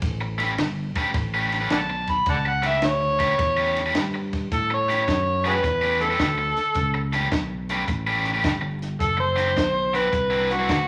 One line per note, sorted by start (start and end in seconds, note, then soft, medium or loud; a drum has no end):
0.02 0.57 A1 medium
0.02 kick loud
0.02 snare soft
0.02 ride medium
0.21 muted overdriven electric guitar stroke soft
0.38 0.51 A3 medium
0.38 0.51 C#4 medium
0.38 0.52 G4 medium
0.38 0.52 B4 medium
0.38 snare soft
0.38 ride medium
0.58 0.93 G1 medium
0.58 muted overdriven electric guitar stroke soft
0.58 snare loud
0.58 ride medium
0.95 1.08 A3 medium
0.95 1.09 C#4 medium
0.95 1.09 G4 medium
0.95 1.09 B4 medium
0.95 muted fingered electric bass stroke soft
0.95 kick medium
0.95 snare soft
0.95 ride medium
1.14 1.69 A1 medium
1.14 muted overdriven electric guitar stroke soft
1.14 kick loud
1.14 snare soft
1.14 ride medium
1.34 1.56 A3 medium
1.34 1.56 C#4 medium
1.34 1.56 G4 medium
1.34 1.55 B4 medium
1.52 snare soft
1.52 ride medium
1.61 1.77 A3 medium
1.61 1.77 C#4 medium
1.61 1.76 G4 medium
1.61 1.76 B4 medium
1.70 2.25 B1 medium
1.70 1.80 D5 medium
1.70 1.80 F#5 medium
1.70 2.12 A5 medium
1.70 snare loud
1.70 ride medium
1.90 muted overdriven electric guitar stroke soft
2.07 2.27 B5 medium
2.07 kick medium
2.07 snare soft
2.07 ride medium
2.26 2.81 C#2 medium
2.26 2.36 D5 medium
2.26 2.38 F#5 medium
2.26 2.50 A5 medium
2.26 kick loud
2.26 snare soft
2.26 ride medium
2.46 2.69 F#5 medium
2.46 muted overdriven electric guitar stroke soft
2.62 2.76 A3 medium
2.62 2.76 C#4 medium
2.62 2.76 G4 medium
2.62 2.76 B4 medium
2.62 snare soft
2.62 ride medium
2.67 2.88 E5 medium
2.82 3.38 D2 medium
2.82 muted overdriven electric guitar stroke soft
2.82 snare loud
2.82 ride medium
2.86 3.94 C#5 loud
3.19 3.32 A3 medium
3.19 3.32 C#4 medium
3.19 3.32 G4 medium
3.19 3.33 B4 medium
3.19 kick medium
3.19 snare soft
3.19 ride medium
3.39 3.94 E2 medium
3.39 muted overdriven electric guitar stroke soft
3.39 kick loud
3.39 snare soft
3.39 ride medium
3.57 3.79 A3 medium
3.57 3.79 C#4 medium
3.57 3.79 G4 medium
3.57 3.79 B4 medium
3.76 snare soft
3.76 ride medium
3.86 4.01 A3 medium
3.86 4.01 C#4 medium
3.86 4.01 G4 medium
3.86 4.01 B4 medium
3.95 4.50 G2 medium
3.95 snare loud
3.95 ride medium
4.14 muted overdriven electric guitar stroke soft
4.33 kick medium
4.33 snare soft
4.33 ride medium
4.52 5.06 A2 medium
4.52 4.71 A4 medium
4.52 kick medium
4.52 snare soft
4.52 closed hi-hat medium
4.70 5.45 C#5 medium
4.70 muted overdriven electric guitar stroke soft
4.89 5.01 A3 medium
4.89 5.01 C#4 medium
4.89 5.02 G4 medium
4.89 5.02 B4 medium
4.89 snare soft
4.89 closed hi-hat medium
5.08 5.62 F#2 medium
5.08 muted overdriven electric guitar stroke soft
5.08 kick medium
5.08 snare loud
5.08 closed hi-hat medium
5.44 5.57 A3 medium
5.44 5.57 C#4 medium
5.44 5.54 F#4 medium
5.44 5.58 G4 medium
5.44 5.55 G#4 medium
5.44 5.57 B4 medium
5.44 6.04 B4 medium
5.44 snare soft
5.44 closed hi-hat medium
5.63 6.18 E2 medium
5.63 muted overdriven electric guitar stroke soft
5.63 kick medium
5.63 snare soft
5.63 closed hi-hat medium
5.81 6.04 A3 medium
5.81 6.04 C#4 medium
5.81 6.04 G4 medium
5.81 6.04 B4 medium
6.01 7.11 A4 medium
6.01 snare soft
6.01 closed hi-hat medium
6.10 6.26 A3 medium
6.10 6.26 C#4 medium
6.10 6.26 G4 medium
6.10 6.26 B4 medium
6.19 6.55 D2 medium
6.19 kick medium
6.19 snare loud
6.19 closed hi-hat medium
6.38 muted overdriven electric guitar stroke soft
6.57 muted fingered electric bass stroke soft
6.57 snare soft
6.57 closed hi-hat medium
6.74 7.30 C#2 medium
6.74 kick medium
6.74 snare soft
6.74 closed hi-hat medium
6.94 muted overdriven electric guitar stroke soft
7.13 7.25 A3 medium
7.13 7.26 C#4 medium
7.13 7.26 G4 medium
7.13 7.26 B4 medium
7.13 snare soft
7.13 closed hi-hat medium
7.31 7.87 B1 medium
7.31 muted overdriven electric guitar stroke soft
7.31 kick medium
7.31 snare loud
7.31 closed hi-hat medium
7.69 7.82 A3 medium
7.69 7.83 C#4 medium
7.69 7.83 G4 medium
7.69 7.83 B4 medium
7.69 snare soft
7.69 closed hi-hat medium
7.88 8.43 A1 medium
7.88 muted overdriven electric guitar stroke soft
7.88 kick medium
7.88 snare soft
7.88 closed hi-hat medium
8.07 8.29 A3 medium
8.07 8.29 C#4 medium
8.07 8.29 G4 medium
8.07 8.29 B4 medium
8.25 snare soft
8.25 closed hi-hat medium
8.34 8.50 A3 medium
8.34 8.50 C#4 medium
8.34 8.50 G4 medium
8.34 8.50 B4 medium
8.44 8.99 G1 medium
8.44 kick medium
8.44 snare loud
8.44 closed hi-hat medium
8.61 muted overdriven electric guitar stroke soft
8.82 snare soft
8.82 closed hi-hat medium
9.00 9.55 F#1 medium
9.00 9.20 A4 medium
9.00 kick medium
9.00 closed hi-hat medium
9.17 9.97 C5 medium
9.17 muted overdriven electric guitar stroke medium
9.36 9.49 D3 medium
9.36 9.49 F#3 medium
9.36 9.49 C4 medium
9.36 9.50 E4 medium
9.36 snare soft
9.36 closed hi-hat medium
9.57 10.11 B1 medium
9.57 muted overdriven electric guitar stroke soft
9.57 kick medium
9.57 snare loud
9.57 closed hi-hat medium
9.94 10.06 D3 medium
9.94 10.07 F#3 medium
9.94 10.07 C4 medium
9.94 10.07 E4 medium
9.94 10.54 B4 medium
9.94 snare soft
9.94 closed hi-hat medium
10.12 10.67 C2 medium
10.12 muted overdriven electric guitar stroke soft
10.12 kick medium
10.12 closed hi-hat medium
10.30 10.53 D3 medium
10.30 10.53 F#3 medium
10.30 10.53 C4 medium
10.30 10.53 E4 medium
10.51 10.88 F#4 medium
10.51 snare soft
10.51 closed hi-hat medium
10.59 10.75 D3 medium
10.59 10.75 F#3 medium
10.59 10.75 C4 medium
10.59 10.74 E4 medium
10.69 10.88 D2 medium
10.69 kick medium
10.69 snare loud
10.69 closed hi-hat medium